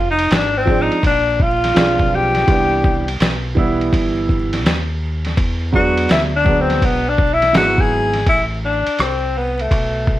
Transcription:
Already playing: fingered electric bass F1
0.10 tenor saxophone D#4
0.19 ride
0.31 fingered electric bass G#1, tenor saxophone D4, snare, hi-hat pedal, ride
0.58 tenor saxophone C4
0.65 upright piano F3 G#3 C4 D4, kick
0.82 tenor saxophone D#4
0.91 muted fingered electric bass stroke, ride
1.03 fingered electric bass A#1, tenor saxophone D4, kick, ride
1.40 tenor saxophone F4, kick
1.64 snare, ride
1.74 fingered electric bass B1, upright piano F3 G#3 C4 D4, snare, hi-hat pedal, ride
1.99 kick
2.15 tenor saxophone G4
2.35 snare, ride
2.46 fingered electric bass C2, upright piano E3 G3 B3 D4, kick, ride
2.84 kick
3.08 ride
3.20 fingered electric bass B1, snare, hi-hat pedal, ride
3.55 upright piano E3 G3 B3 E4, kick
3.81 ride
3.93 fingered electric bass G1, kick, ride
4.29 kick
4.53 snare, ride
4.66 fingered electric bass D#2, snare, hi-hat pedal, ride
5.25 snare, ride
5.37 fingered electric bass E2, kick, ride
5.72 upright piano F#3 G#3 B3 D4, tenor saxophone F#4, kick
5.98 ride
6.09 fingered electric bass D2, tenor saxophone E4, snare, hi-hat pedal, ride
6.36 tenor saxophone D4
6.44 upright piano F#3 G#3 B3 D4, kick
6.61 tenor saxophone C4
6.70 snare, ride
6.82 fingered electric bass B1, tenor saxophone B3, kick, ride
7.09 tenor saxophone D4
7.18 kick
7.33 tenor saxophone E4
7.42 snare, ride
7.53 fingered electric bass G#1, upright piano F#3 G#3 B3 D#4, snare, hi-hat pedal, ride
7.57 tenor saxophone F#4
7.63 upright piano E4
7.78 tenor saxophone G#4, kick
8.13 snare, ride
8.27 fingered electric bass A1, tenor saxophone E4, kick, ride
8.65 tenor saxophone D4
8.87 ride
8.98 fingered electric bass C2, tenor saxophone C4, cross-stick, hi-hat pedal, ride
9.38 tenor saxophone B3
9.59 tenor saxophone A3, ride
9.71 fingered electric bass B1, kick, ride
10.07 kick

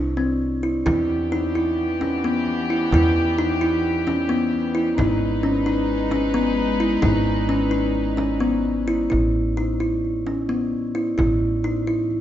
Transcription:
Already playing: upright bass C2, kalimba D4
0.17 kalimba C4
0.63 kalimba E4
0.86 upright bass E2, string section E3 B3 G4, kalimba E4, frame drum
1.32 kalimba D#4
1.55 kalimba E4, frame drum
2.01 kalimba C#4, frame drum
2.24 kalimba B3, frame drum
2.46 frame drum
2.70 kalimba E4
2.92 upright bass E2, kalimba E4, frame drum
3.38 kalimba D#4
3.61 kalimba E4, frame drum
4.07 kalimba C#4, frame drum
4.29 kalimba B3, frame drum
4.53 frame drum
4.75 kalimba E4
4.98 upright bass G#1, string section G#3 D#4 B4, kalimba D#4, frame drum
5.43 kalimba C#4
5.66 kalimba D#4, frame drum
6.11 kalimba C#4, frame drum
6.34 kalimba B3, frame drum
6.57 frame drum
6.80 kalimba E4
7.02 upright bass G#1, kalimba D#4, frame drum
7.49 kalimba C#4, frame drum
7.71 kalimba D#4
7.95 frame drum
8.17 kalimba C#4, frame drum
8.40 kalimba B3
8.65 frame drum
8.88 kalimba E4
9.10 upright bass A1, kalimba E4, frame drum
9.57 kalimba D#4, frame drum
9.80 kalimba E4
10.04 frame drum
10.27 kalimba C#4, frame drum
10.49 kalimba B3
10.73 frame drum
10.95 kalimba E4
11.18 upright bass A1, kalimba E4, frame drum
11.64 kalimba D#4, frame drum
11.87 kalimba E4
12.11 frame drum

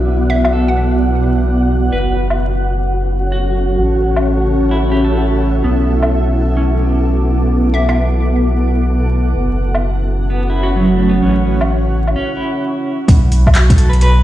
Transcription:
Already playing: sub bass B1, ambient pad B3 E4 A4 D5 F#5, synth texture F#4
0.30 synth pluck E5
0.45 synth pluck E5, low woodblock
0.53 clean electric guitar A4
0.68 synth pluck F#5
1.92 sub bass F#1, ambient pad C#4, clean electric guitar B4
2.10 ambient pad F#4
2.30 ambient pad A4 C#5, low woodblock
3.32 clean electric guitar F#4
3.78 sub bass A1
3.96 ambient pad E4
4.16 low woodblock
4.23 ambient pad E5
4.71 clean electric guitar E4
4.92 clean electric guitar G4
5.04 clean electric guitar A4
5.64 sub bass B1, clean electric guitar B3, ambient pad B3
5.89 ambient pad D6
6.03 low woodblock
6.21 ambient pad F#5
6.57 clean electric guitar C#4
7.74 synth pluck E5
7.89 synth pluck E5, low woodblock
9.36 sub bass F#1, ambient pad C#4
9.55 ambient pad F#4
9.75 low woodblock
9.95 ambient pad C#5
10.30 clean electric guitar B3
10.50 clean electric guitar E4
10.63 clean electric guitar F#4
10.76 clean electric guitar F#3
10.96 clean electric guitar A3
11.09 clean electric guitar B3
11.23 sub bass A1, clean electric guitar C#4
11.61 low woodblock
12.07 low woodblock
12.16 clean electric guitar C#4
12.37 clean electric guitar E4
13.08 sub bass B1, ambient pad B3, kick, closed hi-hat
13.32 open hi-hat
13.47 kick, low woodblock
13.52 ambient pad D5, clap, closed hi-hat
13.56 clean electric guitar F#4
13.70 kick, closed hi-hat
13.76 clean electric guitar A4, open hi-hat
13.83 ambient pad F#5
13.89 clean electric guitar B4
13.93 closed hi-hat
14.01 clean electric guitar B4, closed hi-hat

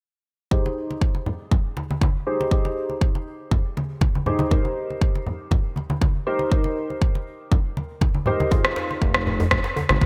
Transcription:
0.51 felt piano D#4 G4 G#4 C5, kick, low conga
0.66 muted conga
0.91 muted conga
1.01 kick
1.15 muted conga
1.26 low conga
1.51 kick, muted conga, low conga
1.77 muted conga, high conga
1.91 high conga
2.01 kick, muted conga, high conga
2.26 felt piano D#4 G4 G#4 C5
2.41 muted conga
2.51 felt piano D#4 G4 G#4 C5, kick
2.65 muted conga
2.90 muted conga
3.01 kick
3.15 muted conga
3.51 kick, muted conga, low conga
3.77 muted conga, high conga
4.01 kick, muted conga, high conga
4.15 high conga
4.26 felt piano D#4 G4 G#4 C5, low conga
4.39 muted conga, high conga
4.51 felt piano D#4 G4 A#4 C5, kick, low conga
4.65 muted conga
4.90 muted conga
5.01 kick
5.15 muted conga
5.27 low conga
5.51 kick, muted conga, low conga
5.76 muted conga, high conga
5.90 high conga
6.02 kick, muted conga, high conga
6.27 felt piano D#4 G4 A#4 C5
6.39 muted conga
6.52 felt piano D#4 G4 A#4 C5, kick
6.64 muted conga
6.90 muted conga
7.02 kick
7.15 muted conga
7.52 kick, muted conga, low conga
7.77 muted conga, high conga
8.01 kick, muted conga, high conga
8.15 high conga
8.26 felt piano D#4 G4 A#4 C5, low conga
8.40 muted conga, high conga
8.51 felt piano D#4 F4 G#4 C5, kick, djembe tone, low conga
8.65 cross-stick, muted conga
8.76 djembe slap
8.91 muted conga
9.02 analog synth bass F1, kick
9.14 cross-stick, muted conga
9.27 low conga
9.40 djembe tone, djembe bass
9.51 analog synth bass F1, kick, cross-stick, muted conga, low conga
9.64 djembe slap
9.76 muted conga, djembe tone, high conga
9.89 analog synth bass G#1, cross-stick, high conga
10.01 analog synth bass C2, kick, muted conga, high conga

